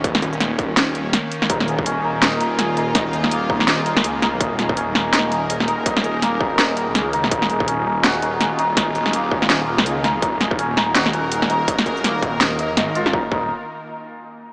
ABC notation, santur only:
X:1
M:4/4
L:1/8
Q:"Swing 16ths" 1/4=165
K:Ebm
V:1 name="Santur"
z8 | E A D E e E A E | e A B, E e B A E | E A D E e E A E |
e A B, E e B A E | E A D E G E A E | e A B, E e B A E | E A D E G E A E |
e A B, E e e e F | E E z6 |]